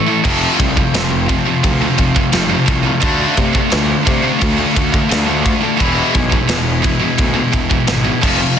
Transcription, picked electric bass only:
0.25 0.46 F1 loud
0.59 0.80 C2 medium
0.95 1.36 F1 loud
1.64 1.85 D2 medium
1.99 2.19 F1 medium
2.35 2.55 F1 medium
2.68 2.89 C2 loud
3.03 3.24 D2 medium
3.38 3.59 C3 loud
3.73 3.94 D2 loud
4.07 4.28 C3 medium
4.42 4.63 D2 loud
4.77 4.98 D2 medium
5.12 5.53 D2 medium
5.81 6.01 E1 medium
6.15 6.36 B1 medium
6.49 6.91 E1 medium
7.19 7.40 D2 loud
7.54 7.74 E1 medium
7.88 8.09 G#1 medium
8.23 8.44 F1 medium

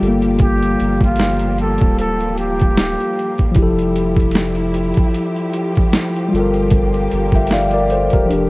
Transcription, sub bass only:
0.02 0.76 G1 medium
0.81 1.78 G1 medium
1.82 2.96 D1 loud
3.56 4.93 F1 medium
6.33 7.08 G1 medium
7.13 8.10 G1 medium
8.14 8.28 D1 medium
8.31 8.50 F1 loud

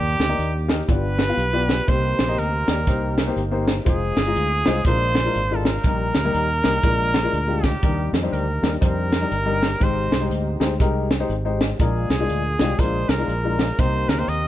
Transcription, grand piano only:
0.00 0.65 D#3 medium
0.00 0.16 A#3 medium
0.00 0.16 D#4 medium
0.00 0.16 G4 medium
0.00 0.16 D5 medium
0.29 0.50 A#3 medium
0.29 0.50 D#4 medium
0.29 0.50 G4 medium
0.29 0.50 D5 medium
0.68 0.80 A#3 medium
0.68 0.80 D#4 medium
0.68 0.80 G4 medium
0.68 0.80 A#4 medium
0.88 1.64 G2 medium
0.88 1.15 B3 medium
0.88 1.15 F4 medium
0.88 1.15 G4 medium
0.88 1.16 D5 medium
1.28 1.40 B3 medium
1.28 1.41 F4 medium
1.28 1.41 G4 medium
1.28 1.41 F5 medium
1.53 1.76 B3 medium
1.53 1.76 F4 medium
1.53 1.76 G4 medium
1.53 1.76 D5 medium
1.87 2.64 C3 medium
1.87 2.14 A#3 medium
1.87 2.14 D#4 medium
1.87 2.14 G4 medium
1.87 2.15 C5 medium
2.27 2.48 A#3 medium
2.27 2.49 D#4 medium
2.27 2.49 G4 medium
2.27 2.49 D#5 medium
2.68 2.79 A#3 medium
2.68 2.79 D#4 medium
2.68 2.79 G4 medium
2.68 2.79 D5 medium
2.88 3.14 A#3 medium
2.88 3.14 D#4 medium
2.88 3.14 G4 medium
2.88 3.14 C5 medium
3.27 3.39 A#3 medium
3.27 3.39 D#4 medium
3.27 3.39 G4 medium
3.27 3.39 C5 medium
3.51 3.74 A#3 medium
3.51 3.74 D#4 medium
3.51 3.74 G4 medium
3.51 3.74 C5 medium
3.85 4.12 G#3 medium
3.85 4.12 D#4 medium
3.85 4.13 F4 medium
3.85 4.13 C5 medium
4.26 4.47 G#3 medium
4.26 4.47 D#4 medium
4.26 4.48 F4 medium
4.26 4.48 D#5 medium
4.66 4.77 G#3 medium
4.66 4.78 D#4 medium
4.66 4.77 F4 medium
4.66 4.77 C5 loud
4.86 5.62 A#2 medium
4.86 5.13 G#3 medium
4.86 5.13 D4 medium
4.86 5.13 F4 medium
4.86 5.13 A#4 medium
5.25 5.37 G#3 medium
5.25 5.38 D4 medium
5.25 5.38 F4 medium
5.25 5.38 A#4 medium
5.51 5.73 G#3 medium
5.51 5.73 D4 medium
5.51 5.73 F4 medium
5.51 5.73 A#4 medium
5.85 6.61 A#2 medium
5.85 6.12 G3 medium
5.85 6.12 A#3 medium
5.85 6.12 D#4 medium
5.85 6.12 A#4 medium
6.24 6.46 G3 medium
6.24 6.45 A#3 medium
6.24 6.46 D#4 medium
6.24 6.46 A#4 medium
6.65 6.76 G3 medium
6.65 6.76 A#3 medium
6.65 6.76 D#4 medium
6.65 6.76 A#4 medium
6.83 7.60 A#2 medium
6.83 7.10 G#3 medium
6.83 7.11 D4 medium
6.83 7.11 F4 medium
6.83 7.11 A#4 medium
7.23 7.36 G#3 medium
7.23 7.36 D4 medium
7.23 7.36 F4 medium
7.23 7.36 A#4 medium
7.47 7.71 G#3 medium
7.47 7.71 D4 medium
7.47 7.71 F4 medium
7.47 7.71 G4 medium
7.83 8.59 D#3 medium
7.83 8.10 G3 medium
7.83 8.10 D4 medium
7.83 8.10 D#4 medium
7.83 8.10 A#4 medium
8.23 8.44 G3 medium
8.23 8.44 D4 medium
8.23 8.44 D#4 medium
8.23 8.44 C5 medium
8.62 8.74 G3 medium
8.62 8.74 D4 medium
8.62 8.74 D#4 medium
8.62 8.74 A#4 medium
8.81 9.09 G3 medium
8.81 9.08 D4 medium
8.81 9.08 D#4 medium
8.81 9.09 C5 medium
9.21 9.34 G3 medium
9.21 9.34 D4 medium
9.21 9.34 D#4 medium
9.21 9.34 A#4 medium
9.45 9.69 G3 medium
9.45 9.69 D4 medium
9.45 9.69 D#4 medium
9.45 9.69 A#4 medium
9.80 10.57 G#2 medium
9.80 10.08 G#3 medium
9.80 10.08 D#4 medium
9.80 10.08 G4 medium
9.80 10.08 C5 medium
10.20 10.42 G#3 medium
10.20 10.42 D#4 medium
10.20 10.43 G4 medium
10.20 10.43 C5 medium
10.60 10.72 G#3 medium
10.60 10.72 D#4 medium
10.60 10.72 G4 medium
10.60 10.72 C5 medium
10.80 11.07 G#3 medium
10.80 11.08 D#4 medium
10.80 11.08 G4 medium
10.80 11.08 A#4 medium
11.20 11.33 G#3 medium
11.20 11.33 D#4 medium
11.20 11.33 G4 medium
11.20 11.33 C5 medium
11.45 11.68 G#3 medium
11.45 11.68 D#4 medium
11.45 11.68 G4 medium
11.45 11.68 C5 medium
11.80 12.56 A#2 medium
11.80 12.07 G#3 medium
11.80 12.07 D4 medium
11.80 12.07 F4 medium
11.80 12.07 A#4 medium
12.20 12.41 G#3 medium
12.20 12.41 D4 medium
12.20 12.41 F4 medium
12.20 12.42 G#4 medium
12.60 12.71 G#3 medium
12.60 12.71 D4 medium
12.60 12.72 F4 medium
12.60 12.72 G4 medium
12.78 13.06 G#3 medium
12.78 13.06 D4 medium
12.78 13.06 F4 medium
12.78 13.06 A#4 medium
13.18 13.31 G#3 medium
13.18 13.31 D4 medium
13.18 13.31 F4 medium
13.18 13.32 A#4 medium
13.44 13.67 G#3 medium
13.44 13.67 D4 medium
13.44 13.67 F4 medium
13.44 13.67 A#4 medium
13.78 14.48 C3 medium
13.78 14.05 A#3 medium
13.78 14.05 D#4 medium
13.78 14.06 G4 medium
13.78 14.06 C5 medium
14.18 14.39 A#3 medium
14.18 14.39 D#4 medium
14.18 14.40 G4 medium
14.18 14.40 A#4 medium

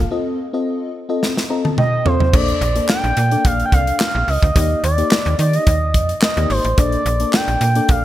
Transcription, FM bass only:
2.33 2.53 A#1 loud
2.61 2.81 A#1 loud
3.04 3.13 A#1 medium
3.17 3.37 A#2 loud
3.45 3.64 A#1 loud
3.72 3.92 C2 medium
4.15 4.24 A#1 loud
4.28 4.38 C#2 medium
4.42 4.52 D2 medium
4.56 4.75 D#2 loud
4.84 5.03 D#2 loud
5.26 5.35 D#2 loud
5.39 5.59 D#3 medium
5.67 5.96 D#2 loud
5.94 6.14 F2 medium
6.37 6.46 D#2 loud
6.50 6.60 G#1 loud
6.65 6.74 A1 medium
6.78 6.98 A#1 loud
7.06 7.25 A#1 loud
7.48 7.57 A#1 medium
7.61 7.81 A#2 loud
7.89 8.05 A#1 loud

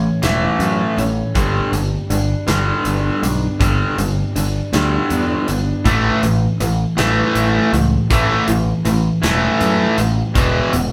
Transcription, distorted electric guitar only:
5.85 6.21 A2 medium
5.85 6.21 E3 medium
5.85 6.21 A3 loud
6.23 6.57 A2 medium
6.23 6.57 E3 medium
6.60 6.94 A2 medium
6.60 6.94 E3 medium
6.97 7.70 A2 medium
6.97 7.71 E3 medium
6.97 7.71 A3 medium
7.73 8.07 A2 medium
7.73 8.07 E3 medium
8.10 8.46 A2 medium
8.10 8.46 E3 medium
8.10 8.47 A3 loud
8.49 8.82 A2 medium
8.49 8.82 E3 medium
8.86 9.19 A2 medium
8.86 9.20 E3 medium
9.23 9.96 A2 medium
9.23 9.96 E3 medium
9.23 9.96 A3 loud
9.98 10.32 A2 medium
9.98 10.32 E3 medium
10.36 10.71 E2 medium
10.36 10.71 B2 loud
10.36 10.72 E3 loud
10.73 10.92 E2 medium
10.73 10.92 B2 medium

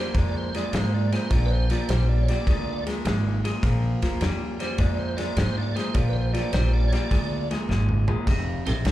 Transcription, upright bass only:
0.15 0.51 F2 medium
0.72 1.09 G#2 medium
1.31 1.67 A#1 medium
1.89 2.25 A#1 medium
2.47 2.83 D2 medium
3.05 3.41 G#1 medium
3.63 3.88 A#1 medium
4.02 4.14 D2 medium
4.21 4.57 F2 loud
4.79 5.16 F2 medium
5.36 5.73 G#2 medium
5.95 6.31 A#1 medium
6.53 6.89 A#1 medium
7.11 7.48 D2 medium
7.69 8.05 G#1 medium
8.27 8.52 F1 medium
8.67 8.78 A1 medium
8.85 8.92 C2 medium

